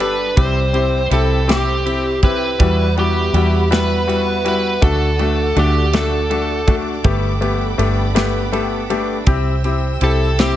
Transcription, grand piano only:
0.00 0.26 B3 medium
0.00 0.26 G4 medium
0.00 0.26 A4 medium
0.36 0.63 C4 medium
0.36 0.63 E4 medium
0.36 0.63 G4 medium
0.73 1.00 C4 medium
0.73 1.00 E4 medium
0.73 1.00 G4 medium
1.11 1.37 C4 medium
1.11 1.38 E4 medium
1.11 1.38 G4 medium
1.48 1.74 C4 medium
1.48 1.75 E4 medium
1.48 1.75 G4 loud
1.86 2.12 C4 medium
1.86 2.12 E4 medium
1.86 2.12 G4 medium
2.23 2.49 C4 medium
2.23 2.49 E4 medium
2.23 2.49 G4 medium
2.60 2.86 G3 medium
2.60 2.86 E4 medium
2.60 2.86 F#4 medium
2.97 3.23 G3 medium
2.97 3.23 E4 medium
2.97 3.23 F#4 medium
3.34 3.60 G3 medium
3.34 3.60 E4 medium
3.34 3.60 F#4 medium
3.70 3.97 G3 medium
3.70 3.97 E4 medium
3.70 3.97 F#4 medium
4.07 4.34 G3 medium
4.07 4.34 E4 medium
4.07 4.34 F#4 medium
4.44 4.71 G3 medium
4.44 4.71 E4 medium
4.44 4.71 F#4 medium
4.82 5.08 A3 medium
4.82 5.08 D4 medium
4.82 5.08 F#4 loud
5.19 5.45 A3 medium
5.19 5.46 D4 medium
5.19 5.46 F#4 medium
5.57 5.83 A3 medium
5.57 5.83 D4 medium
5.57 5.83 F#4 medium
5.94 6.20 A3 medium
5.94 6.20 D4 medium
5.94 6.20 F#4 medium
6.30 6.57 A3 medium
6.30 6.57 D4 medium
6.30 6.57 F#4 medium
6.67 6.94 A3 medium
6.67 6.94 D4 medium
6.67 6.94 F#4 medium
7.04 7.31 A3 medium
7.04 7.31 B3 medium
7.04 7.31 G4 medium
7.41 7.67 A3 medium
7.41 7.68 B3 medium
7.41 7.68 G4 medium
7.78 8.05 A3 medium
7.78 8.05 B3 medium
7.78 8.05 G4 medium
8.15 8.42 A3 medium
8.15 8.42 B3 medium
8.15 8.42 G4 medium
8.52 8.79 A3 medium
8.52 8.79 B3 medium
8.52 8.79 G4 medium
8.90 9.16 A3 medium
8.90 9.16 B3 medium
8.90 9.16 G4 medium
9.27 9.53 C4 medium
9.27 9.54 E4 medium
9.27 9.53 G4 loud
9.65 9.91 C4 medium
9.65 9.91 E4 medium
9.65 9.91 G4 medium
10.02 10.28 C4 medium
10.02 10.28 E4 medium
10.02 10.28 G4 medium
10.39 10.56 C4 medium
10.39 10.56 E4 medium
10.39 10.56 G4 medium

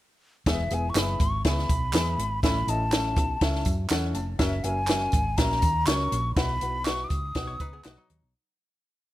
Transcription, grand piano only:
0.46 1.16 E3 medium
0.46 0.60 B3 medium
0.46 0.60 E4 medium
0.46 0.60 G#4 medium
0.46 0.60 E5 medium
0.71 0.84 B3 medium
0.71 0.84 E4 medium
0.71 0.84 G#4 medium
0.71 0.84 E5 medium
0.95 1.22 B3 medium
0.95 1.22 E4 medium
0.95 1.22 G#4 medium
0.95 1.22 E5 medium
1.45 1.71 B3 medium
1.45 1.71 E4 medium
1.45 1.71 G#4 medium
1.45 1.71 E5 medium
1.94 2.21 B3 medium
1.94 2.21 E4 medium
1.94 2.21 G#4 medium
1.94 2.20 E5 medium
2.43 3.13 A2 medium
2.43 2.57 C#4 medium
2.43 2.56 E4 medium
2.43 2.57 A4 medium
2.43 2.57 E5 medium
2.68 2.81 C#4 medium
2.68 2.81 E4 soft
2.68 2.81 A4 medium
2.68 2.81 D#5 medium
2.93 3.19 C#4 medium
2.93 3.20 E4 medium
2.93 3.20 A4 medium
2.93 3.20 E5 medium
3.42 3.69 C#4 medium
3.42 3.69 E4 medium
3.42 3.69 A4 medium
3.42 3.69 E5 medium
3.91 4.17 C#4 medium
3.91 4.17 E4 medium
3.91 4.17 A4 medium
3.91 4.14 E5 medium
3.91 4.17 F#5 medium
4.15 4.38 A5 medium
4.39 4.53 C#4 medium
4.39 4.53 F#4 medium
4.39 4.53 A#4 medium
4.39 4.53 E5 medium
4.64 4.78 C#4 medium
4.64 4.78 F#4 medium
4.64 4.78 A#4 medium
4.64 4.78 E5 medium
4.89 5.16 C#4 medium
4.89 5.16 F#4 medium
4.89 5.16 A#4 medium
4.89 5.16 E5 medium
5.38 5.65 C#4 medium
5.38 5.65 F#4 medium
5.38 5.65 A#4 medium
5.38 5.65 E5 medium
5.87 6.14 C#4 medium
5.87 6.14 F#4 medium
5.87 6.14 A#4 medium
5.87 6.14 C#5 medium
6.37 7.07 B2 medium
6.37 6.50 E4 medium
6.37 6.50 F#4 medium
6.37 6.51 B4 medium
6.37 6.50 F#5 loud
6.62 6.75 E4 medium
6.62 6.75 F#4 medium
6.62 6.75 B4 medium
6.62 6.75 F#5 medium
6.86 7.13 E4 medium
6.86 7.13 F#4 medium
6.86 7.13 B4 medium
6.86 7.13 F#5 medium
7.36 8.06 B2 medium
7.36 7.63 D#4 medium
7.36 7.63 F#4 medium
7.36 7.63 B4 medium
7.36 7.63 F#5 medium
7.85 8.12 D#4 medium
7.85 8.12 F#4 medium
7.85 8.12 B4 medium
7.85 8.12 F#5 medium

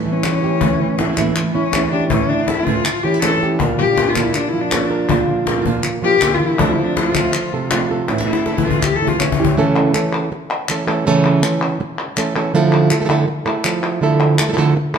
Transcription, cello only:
0.00 0.14 A3 medium
0.12 1.05 C#4 medium
1.17 1.37 A#3 medium
1.36 1.56 A3 medium
1.55 1.91 C#4 loud
1.91 2.09 D4 medium
2.10 2.31 C#4 medium
2.29 2.49 D4 medium
2.47 2.68 E4 medium
2.66 3.05 F4 medium
3.03 3.22 G4 medium
3.23 3.40 A4 loud
3.79 4.11 G4 medium
4.09 4.24 F4 medium
4.23 4.38 E4 medium
4.36 4.50 D4 medium
4.49 4.63 E4 medium
4.61 4.74 D4 medium
4.73 4.87 C#4 medium
4.85 5.41 D4 medium
6.04 6.36 G4 loud
6.35 6.48 F4 medium
6.47 6.60 E4 medium
6.59 6.73 D4 medium
6.72 6.86 E4 medium
6.84 6.98 D4 medium
6.96 7.11 E4 medium
7.09 7.65 F4 medium
8.27 8.67 E4 medium
8.65 8.85 F4 medium
8.84 8.97 G4 medium
8.96 9.10 A4 medium
9.08 9.22 F4 medium
9.20 9.57 C#4 medium

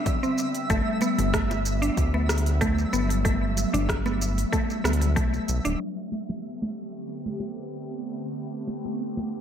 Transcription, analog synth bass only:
0.70 0.82 G1 loud
1.19 1.90 G1 medium
1.97 2.86 D2 medium
2.93 3.66 G1 medium
3.74 4.45 G1 medium
4.85 5.18 D2 loud
5.17 5.39 B1 medium
5.49 5.60 B1 medium
5.65 5.76 D1 loud

